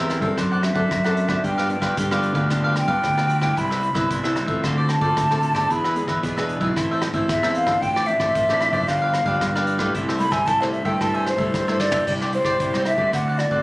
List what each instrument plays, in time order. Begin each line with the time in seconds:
Already playing: fingered electric bass E2, nylon-string guitar E3, cavaquinho E5
0.00 nylon-string guitar C4 G4 A#4, cavaquinho A#4 C5
0.10 cross-stick, closed hi-hat
0.20 fingered electric bass G2, nylon-string guitar C4 D4 A4, cavaquinho A#4 C5 E5, kick, closed hi-hat
0.37 fingered electric bass F#2, nylon-string guitar F#3, cavaquinho D4 C5 D5 F#5, kick, cross-stick, closed hi-hat
0.52 cavaquinho C5 D5 F#5
0.63 flute E5, muted cavaquinho stroke, cross-stick, closed hi-hat
0.73 fingered electric bass F#2, nylon-string guitar C4 D4 A4, cavaquinho C5 D5 F#5, kick
0.91 fingered electric bass F#2, nylon-string guitar F#3, kick, cross-stick, closed hi-hat
1.04 nylon-string guitar C4 D4 A4, cavaquinho C5 D5 F#5, cross-stick
1.17 closed hi-hat
1.28 nylon-string guitar F3 B3 D4, cavaquinho C5 D5 F#5, kick, cross-stick
1.43 nylon-string guitar G2, fingered electric bass G2, cavaquinho D4 G4 B4 F5, flute G5, kick, closed hi-hat
1.58 cavaquinho G4 B4 F5, cross-stick
1.69 nylon-string guitar F3 B3 D4, muted cavaquinho stroke, closed hi-hat
1.80 fingered electric bass G2, cavaquinho G4 B4 F5, kick, cross-stick, closed hi-hat
1.97 fingered electric bass G2, nylon-string guitar D3, cavaquinho D4 G4 B4 F5, kick, closed hi-hat
2.11 nylon-string guitar F3 B3 D4, cavaquinho G4 B4 F5, cross-stick
2.23 closed hi-hat
2.33 fingered electric bass D2, nylon-string guitar F3 B3 D4, cavaquinho G4 B4 F5, kick, closed hi-hat
2.50 nylon-string guitar G2 F3 B3 D4, cavaquinho D4 G4 B4 F5, kick, cross-stick, closed hi-hat
2.64 cavaquinho G4 B4 F5
2.75 flute G5, muted cavaquinho stroke, cross-stick, closed hi-hat
2.86 fingered electric bass G2, nylon-string guitar F3 B3 D4, cavaquinho G4 B4 F5, kick, closed hi-hat
3.04 fingered electric bass D2, nylon-string guitar D3, kick, cross-stick, closed hi-hat
3.17 nylon-string guitar F3 B3 D4, cavaquinho G4 B4 F5, cross-stick
3.29 closed hi-hat
3.41 nylon-string guitar G3 B3 E4, cavaquinho G4 B4 F5, kick, cross-stick
3.56 fingered electric bass C2, nylon-string guitar C3, cavaquinho E4 B4 C5 E5, flute B5, kick, closed hi-hat
3.70 cavaquinho B4 C5 E5, cross-stick, closed hi-hat
3.82 muted cavaquinho stroke, closed hi-hat
3.93 fingered electric bass C2, nylon-string guitar G3 B3 E4, cavaquinho B4 C5 E5, kick, cross-stick, closed hi-hat
4.10 fingered electric bass C2, nylon-string guitar G2, cavaquinho E4 B4 C5 E5, kick, closed hi-hat
4.23 nylon-string guitar G3 B3 E4, cavaquinho B4 C5 E5, cross-stick
4.36 cross-stick, closed hi-hat
4.46 fingered electric bass A1, nylon-string guitar C4 F4 A4, cavaquinho B4 C5 E5, kick, closed hi-hat
4.63 fingered electric bass D2, nylon-string guitar D3, cavaquinho F4 A4 C5 D5, kick, cross-stick, closed hi-hat
4.78 cavaquinho A4 C5 D5
4.89 flute A5, muted cavaquinho stroke, cross-stick, closed hi-hat
4.99 fingered electric bass D2, nylon-string guitar C4 F4 A4, cavaquinho C5 D5, kick
5.03 cavaquinho A4
5.17 fingered electric bass D2, nylon-string guitar A2, kick, cross-stick, closed hi-hat
5.31 nylon-string guitar C4 F4 A4, cavaquinho A4 C5 D5, cross-stick
5.43 closed hi-hat
5.54 nylon-string guitar B3 D4 G#4, cavaquinho A4 C5 D5, kick, cross-stick
5.70 fingered electric bass E2, nylon-string guitar E3, cavaquinho D4 G#4 B4 E5, flute B5, kick, closed hi-hat
5.84 cavaquinho G#4 B4 E5, cross-stick
5.96 nylon-string guitar B3 D4 G#4, muted cavaquinho stroke, closed hi-hat
6.06 fingered electric bass E2, cavaquinho B4 E5, kick, cross-stick, closed hi-hat
6.10 cavaquinho G#4
6.23 fingered electric bass E2, nylon-string guitar B2, cavaquinho D4 G#4 B4 E5, kick, closed hi-hat
6.36 nylon-string guitar B3 D4 G#4, cavaquinho G#4 B4 E5, cross-stick
6.49 closed hi-hat
6.59 fingered electric bass B1, nylon-string guitar E3 C4 E4, cavaquinho G#4 B4 E5, kick, closed hi-hat
6.76 fingered electric bass A1, nylon-string guitar A2, cavaquinho E4 A4 C5 E5, kick, cross-stick, closed hi-hat
6.91 cavaquinho A4 C5 E5
7.02 muted cavaquinho stroke, cross-stick, closed hi-hat
7.11 fingered electric bass A1, nylon-string guitar E3 C4 E4, cavaquinho E5, kick, closed hi-hat
7.15 cavaquinho A4 C5
7.29 fingered electric bass E2, nylon-string guitar E3, flute E5, kick, cross-stick, closed hi-hat
7.43 nylon-string guitar E3 C4 E4, cavaquinho A4 C5 E5, cross-stick
7.55 flute F5, closed hi-hat
7.66 nylon-string guitar F3 C4 D4, cavaquinho A4 C5 E5, kick, cross-stick
7.81 fingered electric bass A1, nylon-string guitar A2, cavaquinho F4 A4 C5 D5, flute G5, kick, closed hi-hat
7.96 cavaquinho A4 C5 D5, cross-stick, closed hi-hat
8.06 nylon-string guitar F3 C4 D4, flute E5, muted cavaquinho stroke, closed hi-hat
8.18 fingered electric bass A1, cavaquinho A4 C5 D5, kick, cross-stick, closed hi-hat
8.35 fingered electric bass A1, nylon-string guitar A2, cavaquinho F4 A4 C5 D5, kick, closed hi-hat
8.49 nylon-string guitar F3 C4 D4, cavaquinho A4 C5 D5, cross-stick
8.61 cross-stick, closed hi-hat
8.71 fingered electric bass F#1, nylon-string guitar F3 B3 D4, cavaquinho C5 D5, kick, closed hi-hat
8.75 cavaquinho A4
8.87 fingered electric bass G1, nylon-string guitar G2, cavaquinho D4 G4 B4 F5, flute F5, kick, cross-stick, closed hi-hat
9.02 cavaquinho G4 B4 F5
9.14 muted cavaquinho stroke, cross-stick, closed hi-hat
9.24 fingered electric bass G1, nylon-string guitar F3 B3 D4, cavaquinho G4 B4 F5, kick
9.41 fingered electric bass G2, nylon-string guitar D3, kick, cross-stick, closed hi-hat
9.55 nylon-string guitar F3 B3 D4, cavaquinho G4 B4 F5, cross-stick
9.67 closed hi-hat
9.78 nylon-string guitar G3 A3 E4, cavaquinho G4 B4 F5, kick, cross-stick
9.94 fingered electric bass C2, nylon-string guitar C3, cavaquinho E4 A4 C5 E5, kick, closed hi-hat
10.08 cavaquinho A4 C5 E5, cross-stick
10.19 nylon-string guitar G3 A3 E4, flute B5, muted cavaquinho stroke, closed hi-hat
10.30 fingered electric bass C2, cavaquinho A4 C5 E5, flute G#5, kick, cross-stick, closed hi-hat
10.46 fingered electric bass C2, nylon-string guitar G2, cavaquinho E4 A4 C5 E5, flute A5, kick, closed hi-hat
10.61 nylon-string guitar G3 A3 E4, cavaquinho A4 C5 E5, flute C5, cross-stick
10.73 flute E5, closed hi-hat
10.83 fingered electric bass G2, nylon-string guitar G3 A3 E4, cavaquinho A4 C5 E5, flute G5, kick, closed hi-hat
11.00 nylon-string guitar C3 G3 A3 E4, cavaquinho E4 A4 C5 E5, flute A5, kick, cross-stick, closed hi-hat
11.14 cavaquinho A4 C5 E5, flute G#5
11.26 flute C5, muted cavaquinho stroke, cross-stick, closed hi-hat
11.36 fingered electric bass C2, nylon-string guitar G3 A3 E4, cavaquinho A4 C5 E5, kick, closed hi-hat
11.53 nylon-string guitar G2, fingered electric bass G2, kick, cross-stick, closed hi-hat
11.67 nylon-string guitar G3 A3 E4, cavaquinho A4 C5 E5, cross-stick
11.80 flute D5, snare
11.91 nylon-string guitar G3 D4 E4, cavaquinho A4 C5 E5, floor tom
12.07 fingered electric bass C2, nylon-string guitar C3, cavaquinho E4 G4 C5 D5, flute D5, kick, crash
12.21 cavaquinho G4 C5 D5, cross-stick, closed hi-hat
12.32 nylon-string guitar G3 D4 E4, flute C5, muted cavaquinho stroke, closed hi-hat
12.43 fingered electric bass C2, cavaquinho G4 C5 D5, kick, cross-stick
12.60 fingered electric bass C2, nylon-string guitar G3, cavaquinho E4 G4 C5 D5, kick, closed hi-hat
12.74 nylon-string guitar G3 D4 E4, cavaquinho G4 C5 D5, cross-stick, closed hi-hat
12.85 flute E5, cross-stick, closed hi-hat
12.96 fingered electric bass G2, nylon-string guitar A3 C4 F#4, cavaquinho C5 D5, kick
13.00 cavaquinho G4
13.13 fingered electric bass D2, nylon-string guitar D3, cavaquinho D4 C5 D5 F#5, flute F#5, kick, cross-stick, closed hi-hat
13.28 cavaquinho C5 D5 F#5
13.38 flute D5, muted cavaquinho stroke, cross-stick, closed hi-hat
13.49 fingered electric bass D2, nylon-string guitar A3 C4 F#4, cavaquinho C5 D5 F#5, kick